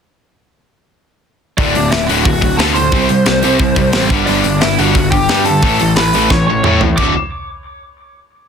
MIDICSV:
0, 0, Header, 1, 5, 480
1, 0, Start_track
1, 0, Key_signature, 2, "major"
1, 0, Tempo, 337268
1, 2242, Time_signature, 4, 2, 24, 8
1, 12073, End_track
2, 0, Start_track
2, 0, Title_t, "Lead electric guitar"
2, 0, Program_c, 0, 29
2, 2257, Note_on_c, 0, 74, 82
2, 2265, Note_on_c, 0, 62, 62
2, 2700, Note_off_c, 0, 62, 0
2, 2716, Note_on_c, 0, 76, 77
2, 2733, Note_on_c, 0, 64, 63
2, 2743, Note_off_c, 0, 74, 0
2, 2942, Note_off_c, 0, 76, 0
2, 2948, Note_on_c, 0, 78, 75
2, 2951, Note_off_c, 0, 64, 0
2, 2957, Note_on_c, 0, 66, 54
2, 3178, Note_off_c, 0, 78, 0
2, 3182, Note_off_c, 0, 66, 0
2, 3194, Note_on_c, 0, 78, 89
2, 3209, Note_on_c, 0, 66, 71
2, 3652, Note_off_c, 0, 66, 0
2, 3661, Note_on_c, 0, 81, 84
2, 3673, Note_on_c, 0, 69, 64
2, 3692, Note_off_c, 0, 78, 0
2, 3732, Note_off_c, 0, 81, 0
2, 3744, Note_off_c, 0, 69, 0
2, 3902, Note_on_c, 0, 84, 84
2, 3920, Note_on_c, 0, 72, 63
2, 5779, Note_off_c, 0, 84, 0
2, 5787, Note_off_c, 0, 72, 0
2, 6065, Note_on_c, 0, 74, 90
2, 6079, Note_on_c, 0, 62, 70
2, 6530, Note_off_c, 0, 62, 0
2, 6558, Note_on_c, 0, 76, 91
2, 6571, Note_off_c, 0, 74, 0
2, 6587, Note_on_c, 0, 64, 69
2, 6801, Note_off_c, 0, 64, 0
2, 6807, Note_off_c, 0, 76, 0
2, 6807, Note_on_c, 0, 78, 92
2, 6830, Note_on_c, 0, 66, 65
2, 7262, Note_off_c, 0, 78, 0
2, 7267, Note_off_c, 0, 66, 0
2, 7268, Note_on_c, 0, 79, 87
2, 7301, Note_on_c, 0, 67, 78
2, 7742, Note_off_c, 0, 67, 0
2, 7760, Note_on_c, 0, 81, 84
2, 7773, Note_off_c, 0, 79, 0
2, 7775, Note_on_c, 0, 69, 73
2, 8442, Note_off_c, 0, 69, 0
2, 8480, Note_off_c, 0, 81, 0
2, 8486, Note_on_c, 0, 83, 101
2, 8501, Note_on_c, 0, 71, 78
2, 8942, Note_off_c, 0, 71, 0
2, 8982, Note_off_c, 0, 83, 0
2, 8987, Note_on_c, 0, 85, 104
2, 9007, Note_on_c, 0, 73, 84
2, 9194, Note_off_c, 0, 85, 0
2, 9204, Note_off_c, 0, 73, 0
2, 9211, Note_on_c, 0, 85, 93
2, 9221, Note_on_c, 0, 73, 70
2, 9656, Note_off_c, 0, 85, 0
2, 9662, Note_off_c, 0, 73, 0
2, 9923, Note_on_c, 0, 86, 78
2, 10148, Note_off_c, 0, 86, 0
2, 12073, End_track
3, 0, Start_track
3, 0, Title_t, "Distorted electric guitar"
3, 0, Program_c, 1, 30
3, 2261, Note_on_c, 1, 45, 89
3, 2264, Note_on_c, 1, 38, 83
3, 2266, Note_on_c, 1, 50, 95
3, 2477, Note_off_c, 1, 45, 0
3, 2478, Note_off_c, 1, 38, 0
3, 2479, Note_off_c, 1, 50, 0
3, 2499, Note_on_c, 1, 38, 68
3, 2508, Note_on_c, 1, 45, 66
3, 2706, Note_off_c, 1, 38, 0
3, 2710, Note_off_c, 1, 45, 0
3, 2744, Note_on_c, 1, 38, 66
3, 2751, Note_on_c, 1, 45, 77
3, 2949, Note_off_c, 1, 38, 0
3, 2952, Note_off_c, 1, 45, 0
3, 2981, Note_on_c, 1, 38, 86
3, 2985, Note_on_c, 1, 45, 89
3, 2987, Note_on_c, 1, 50, 87
3, 3197, Note_off_c, 1, 38, 0
3, 3199, Note_off_c, 1, 45, 0
3, 3200, Note_off_c, 1, 50, 0
3, 3217, Note_on_c, 1, 45, 81
3, 3220, Note_on_c, 1, 38, 74
3, 3415, Note_off_c, 1, 38, 0
3, 3421, Note_off_c, 1, 45, 0
3, 3432, Note_on_c, 1, 38, 70
3, 3438, Note_on_c, 1, 45, 76
3, 3653, Note_off_c, 1, 38, 0
3, 3656, Note_off_c, 1, 45, 0
3, 3683, Note_on_c, 1, 38, 86
3, 3693, Note_on_c, 1, 45, 95
3, 3701, Note_on_c, 1, 50, 103
3, 3908, Note_off_c, 1, 38, 0
3, 3913, Note_off_c, 1, 45, 0
3, 3917, Note_off_c, 1, 50, 0
3, 3933, Note_on_c, 1, 38, 70
3, 3936, Note_on_c, 1, 45, 72
3, 4144, Note_off_c, 1, 38, 0
3, 4145, Note_off_c, 1, 45, 0
3, 4171, Note_on_c, 1, 48, 93
3, 4177, Note_on_c, 1, 55, 96
3, 4185, Note_on_c, 1, 60, 100
3, 4390, Note_off_c, 1, 55, 0
3, 4393, Note_off_c, 1, 48, 0
3, 4400, Note_off_c, 1, 60, 0
3, 4407, Note_on_c, 1, 55, 70
3, 4410, Note_on_c, 1, 48, 70
3, 4621, Note_off_c, 1, 55, 0
3, 4622, Note_off_c, 1, 48, 0
3, 4642, Note_on_c, 1, 48, 67
3, 4652, Note_on_c, 1, 55, 71
3, 4859, Note_off_c, 1, 48, 0
3, 4864, Note_off_c, 1, 55, 0
3, 4893, Note_on_c, 1, 48, 85
3, 4894, Note_on_c, 1, 55, 88
3, 4904, Note_on_c, 1, 60, 96
3, 5114, Note_off_c, 1, 48, 0
3, 5115, Note_off_c, 1, 55, 0
3, 5120, Note_off_c, 1, 60, 0
3, 5146, Note_on_c, 1, 55, 79
3, 5149, Note_on_c, 1, 48, 80
3, 5352, Note_off_c, 1, 55, 0
3, 5353, Note_off_c, 1, 48, 0
3, 5374, Note_on_c, 1, 48, 67
3, 5386, Note_on_c, 1, 55, 81
3, 5586, Note_off_c, 1, 48, 0
3, 5592, Note_off_c, 1, 55, 0
3, 5621, Note_on_c, 1, 48, 89
3, 5626, Note_on_c, 1, 55, 88
3, 5633, Note_on_c, 1, 60, 97
3, 5839, Note_off_c, 1, 48, 0
3, 5842, Note_off_c, 1, 55, 0
3, 5845, Note_off_c, 1, 60, 0
3, 5864, Note_on_c, 1, 43, 91
3, 5872, Note_on_c, 1, 50, 96
3, 5872, Note_on_c, 1, 55, 109
3, 6081, Note_off_c, 1, 43, 0
3, 6081, Note_off_c, 1, 50, 0
3, 6085, Note_off_c, 1, 55, 0
3, 6098, Note_on_c, 1, 50, 90
3, 6102, Note_on_c, 1, 43, 94
3, 6109, Note_on_c, 1, 55, 101
3, 6318, Note_off_c, 1, 50, 0
3, 6320, Note_off_c, 1, 43, 0
3, 6323, Note_off_c, 1, 55, 0
3, 6344, Note_on_c, 1, 43, 67
3, 6349, Note_on_c, 1, 50, 70
3, 6552, Note_off_c, 1, 43, 0
3, 6554, Note_off_c, 1, 50, 0
3, 6567, Note_on_c, 1, 43, 74
3, 6575, Note_on_c, 1, 50, 69
3, 6784, Note_off_c, 1, 43, 0
3, 6787, Note_off_c, 1, 50, 0
3, 6816, Note_on_c, 1, 50, 90
3, 6818, Note_on_c, 1, 43, 84
3, 6835, Note_on_c, 1, 55, 93
3, 7038, Note_off_c, 1, 50, 0
3, 7039, Note_off_c, 1, 43, 0
3, 7047, Note_off_c, 1, 55, 0
3, 7061, Note_on_c, 1, 43, 73
3, 7068, Note_on_c, 1, 50, 86
3, 7271, Note_off_c, 1, 43, 0
3, 7274, Note_off_c, 1, 50, 0
3, 7299, Note_on_c, 1, 43, 64
3, 7304, Note_on_c, 1, 50, 75
3, 7510, Note_off_c, 1, 43, 0
3, 7512, Note_off_c, 1, 50, 0
3, 7534, Note_on_c, 1, 43, 92
3, 7535, Note_on_c, 1, 50, 93
3, 7543, Note_on_c, 1, 55, 98
3, 7757, Note_off_c, 1, 43, 0
3, 7758, Note_off_c, 1, 50, 0
3, 7762, Note_off_c, 1, 55, 0
3, 7789, Note_on_c, 1, 43, 63
3, 7794, Note_on_c, 1, 50, 79
3, 7995, Note_off_c, 1, 43, 0
3, 7998, Note_off_c, 1, 50, 0
3, 8014, Note_on_c, 1, 45, 89
3, 8022, Note_on_c, 1, 57, 109
3, 8024, Note_on_c, 1, 52, 95
3, 8237, Note_off_c, 1, 45, 0
3, 8241, Note_off_c, 1, 57, 0
3, 8242, Note_off_c, 1, 52, 0
3, 8264, Note_on_c, 1, 45, 66
3, 8276, Note_on_c, 1, 52, 73
3, 8473, Note_off_c, 1, 45, 0
3, 8479, Note_off_c, 1, 52, 0
3, 8518, Note_on_c, 1, 45, 63
3, 8525, Note_on_c, 1, 52, 77
3, 8720, Note_off_c, 1, 45, 0
3, 8724, Note_off_c, 1, 52, 0
3, 8747, Note_on_c, 1, 45, 81
3, 8765, Note_on_c, 1, 52, 89
3, 8768, Note_on_c, 1, 57, 104
3, 8964, Note_off_c, 1, 45, 0
3, 8973, Note_off_c, 1, 52, 0
3, 8975, Note_off_c, 1, 57, 0
3, 8998, Note_on_c, 1, 45, 76
3, 9004, Note_on_c, 1, 52, 78
3, 9200, Note_off_c, 1, 45, 0
3, 9203, Note_off_c, 1, 52, 0
3, 9244, Note_on_c, 1, 45, 64
3, 9250, Note_on_c, 1, 52, 81
3, 9443, Note_off_c, 1, 45, 0
3, 9445, Note_off_c, 1, 52, 0
3, 9468, Note_on_c, 1, 45, 91
3, 9479, Note_on_c, 1, 57, 101
3, 9480, Note_on_c, 1, 52, 95
3, 9684, Note_off_c, 1, 45, 0
3, 9690, Note_off_c, 1, 52, 0
3, 9690, Note_off_c, 1, 57, 0
3, 9714, Note_on_c, 1, 45, 68
3, 9725, Note_on_c, 1, 52, 82
3, 9917, Note_off_c, 1, 45, 0
3, 9923, Note_off_c, 1, 52, 0
3, 9947, Note_on_c, 1, 38, 104
3, 9953, Note_on_c, 1, 45, 105
3, 9966, Note_on_c, 1, 57, 95
3, 9968, Note_on_c, 1, 50, 94
3, 9968, Note_on_c, 1, 66, 98
3, 10130, Note_off_c, 1, 38, 0
3, 10133, Note_off_c, 1, 45, 0
3, 10139, Note_off_c, 1, 57, 0
3, 10140, Note_off_c, 1, 50, 0
3, 10140, Note_off_c, 1, 66, 0
3, 12073, End_track
4, 0, Start_track
4, 0, Title_t, "Picked electric bass"
4, 0, Program_c, 2, 34
4, 2246, Note_on_c, 2, 26, 78
4, 2465, Note_off_c, 2, 26, 0
4, 2502, Note_on_c, 2, 26, 83
4, 2713, Note_off_c, 2, 26, 0
4, 2734, Note_on_c, 2, 26, 89
4, 2949, Note_off_c, 2, 26, 0
4, 2980, Note_on_c, 2, 26, 80
4, 3193, Note_off_c, 2, 26, 0
4, 3216, Note_on_c, 2, 26, 82
4, 3652, Note_off_c, 2, 26, 0
4, 3683, Note_on_c, 2, 38, 93
4, 4159, Note_off_c, 2, 38, 0
4, 4159, Note_on_c, 2, 36, 87
4, 4382, Note_off_c, 2, 36, 0
4, 4419, Note_on_c, 2, 36, 78
4, 4633, Note_off_c, 2, 36, 0
4, 4651, Note_on_c, 2, 36, 86
4, 4869, Note_off_c, 2, 36, 0
4, 4896, Note_on_c, 2, 36, 74
4, 5111, Note_off_c, 2, 36, 0
4, 5119, Note_on_c, 2, 36, 77
4, 5564, Note_off_c, 2, 36, 0
4, 5612, Note_on_c, 2, 33, 89
4, 5830, Note_off_c, 2, 33, 0
4, 5843, Note_on_c, 2, 31, 82
4, 6065, Note_off_c, 2, 31, 0
4, 6102, Note_on_c, 2, 31, 86
4, 6316, Note_off_c, 2, 31, 0
4, 6341, Note_on_c, 2, 31, 89
4, 6556, Note_off_c, 2, 31, 0
4, 6581, Note_on_c, 2, 31, 83
4, 6796, Note_off_c, 2, 31, 0
4, 6818, Note_on_c, 2, 31, 79
4, 7035, Note_off_c, 2, 31, 0
4, 7045, Note_on_c, 2, 31, 90
4, 7489, Note_off_c, 2, 31, 0
4, 7543, Note_on_c, 2, 43, 95
4, 7979, Note_off_c, 2, 43, 0
4, 8018, Note_on_c, 2, 33, 85
4, 8235, Note_off_c, 2, 33, 0
4, 8272, Note_on_c, 2, 33, 88
4, 8483, Note_off_c, 2, 33, 0
4, 8507, Note_on_c, 2, 33, 91
4, 8720, Note_off_c, 2, 33, 0
4, 8737, Note_on_c, 2, 33, 76
4, 8954, Note_off_c, 2, 33, 0
4, 8975, Note_on_c, 2, 33, 86
4, 9414, Note_off_c, 2, 33, 0
4, 9457, Note_on_c, 2, 45, 92
4, 9895, Note_off_c, 2, 45, 0
4, 9937, Note_on_c, 2, 26, 77
4, 10156, Note_off_c, 2, 26, 0
4, 12073, End_track
5, 0, Start_track
5, 0, Title_t, "Drums"
5, 2247, Note_on_c, 9, 46, 70
5, 2250, Note_on_c, 9, 36, 103
5, 2389, Note_off_c, 9, 46, 0
5, 2392, Note_off_c, 9, 36, 0
5, 2493, Note_on_c, 9, 46, 58
5, 2636, Note_off_c, 9, 46, 0
5, 2740, Note_on_c, 9, 38, 106
5, 2882, Note_off_c, 9, 38, 0
5, 2980, Note_on_c, 9, 46, 61
5, 3122, Note_off_c, 9, 46, 0
5, 3208, Note_on_c, 9, 36, 105
5, 3215, Note_on_c, 9, 46, 77
5, 3350, Note_off_c, 9, 36, 0
5, 3358, Note_off_c, 9, 46, 0
5, 3446, Note_on_c, 9, 36, 84
5, 3451, Note_on_c, 9, 46, 59
5, 3588, Note_off_c, 9, 36, 0
5, 3594, Note_off_c, 9, 46, 0
5, 3692, Note_on_c, 9, 46, 88
5, 3700, Note_on_c, 9, 38, 111
5, 3834, Note_off_c, 9, 46, 0
5, 3843, Note_off_c, 9, 38, 0
5, 3924, Note_on_c, 9, 46, 61
5, 4066, Note_off_c, 9, 46, 0
5, 4154, Note_on_c, 9, 46, 72
5, 4159, Note_on_c, 9, 36, 96
5, 4297, Note_off_c, 9, 46, 0
5, 4302, Note_off_c, 9, 36, 0
5, 4398, Note_on_c, 9, 46, 57
5, 4540, Note_off_c, 9, 46, 0
5, 4637, Note_on_c, 9, 46, 73
5, 4645, Note_on_c, 9, 38, 105
5, 4779, Note_off_c, 9, 46, 0
5, 4787, Note_off_c, 9, 38, 0
5, 4876, Note_on_c, 9, 46, 59
5, 5018, Note_off_c, 9, 46, 0
5, 5111, Note_on_c, 9, 46, 71
5, 5116, Note_on_c, 9, 36, 95
5, 5253, Note_off_c, 9, 46, 0
5, 5258, Note_off_c, 9, 36, 0
5, 5351, Note_on_c, 9, 46, 50
5, 5356, Note_on_c, 9, 36, 77
5, 5494, Note_off_c, 9, 46, 0
5, 5499, Note_off_c, 9, 36, 0
5, 5589, Note_on_c, 9, 46, 81
5, 5598, Note_on_c, 9, 38, 120
5, 5732, Note_off_c, 9, 46, 0
5, 5740, Note_off_c, 9, 38, 0
5, 5834, Note_on_c, 9, 46, 57
5, 5837, Note_on_c, 9, 36, 105
5, 5976, Note_off_c, 9, 46, 0
5, 5980, Note_off_c, 9, 36, 0
5, 6076, Note_on_c, 9, 46, 70
5, 6219, Note_off_c, 9, 46, 0
5, 6318, Note_on_c, 9, 46, 59
5, 6460, Note_off_c, 9, 46, 0
5, 6563, Note_on_c, 9, 46, 77
5, 6571, Note_on_c, 9, 38, 114
5, 6705, Note_off_c, 9, 46, 0
5, 6714, Note_off_c, 9, 38, 0
5, 6811, Note_on_c, 9, 46, 56
5, 6953, Note_off_c, 9, 46, 0
5, 7045, Note_on_c, 9, 36, 101
5, 7045, Note_on_c, 9, 46, 80
5, 7187, Note_off_c, 9, 36, 0
5, 7187, Note_off_c, 9, 46, 0
5, 7285, Note_on_c, 9, 36, 89
5, 7289, Note_on_c, 9, 46, 58
5, 7428, Note_off_c, 9, 36, 0
5, 7432, Note_off_c, 9, 46, 0
5, 7526, Note_on_c, 9, 46, 90
5, 7534, Note_on_c, 9, 38, 115
5, 7668, Note_off_c, 9, 46, 0
5, 7677, Note_off_c, 9, 38, 0
5, 7762, Note_on_c, 9, 46, 63
5, 7905, Note_off_c, 9, 46, 0
5, 8003, Note_on_c, 9, 46, 80
5, 8007, Note_on_c, 9, 36, 106
5, 8145, Note_off_c, 9, 46, 0
5, 8149, Note_off_c, 9, 36, 0
5, 8247, Note_on_c, 9, 46, 60
5, 8389, Note_off_c, 9, 46, 0
5, 8486, Note_on_c, 9, 46, 88
5, 8495, Note_on_c, 9, 38, 108
5, 8628, Note_off_c, 9, 46, 0
5, 8637, Note_off_c, 9, 38, 0
5, 8730, Note_on_c, 9, 46, 61
5, 8872, Note_off_c, 9, 46, 0
5, 8971, Note_on_c, 9, 36, 100
5, 8976, Note_on_c, 9, 38, 60
5, 9113, Note_off_c, 9, 36, 0
5, 9118, Note_off_c, 9, 38, 0
5, 9449, Note_on_c, 9, 45, 93
5, 9592, Note_off_c, 9, 45, 0
5, 9691, Note_on_c, 9, 43, 90
5, 9833, Note_off_c, 9, 43, 0
5, 9926, Note_on_c, 9, 49, 79
5, 9933, Note_on_c, 9, 36, 96
5, 10068, Note_off_c, 9, 49, 0
5, 10075, Note_off_c, 9, 36, 0
5, 12073, End_track
0, 0, End_of_file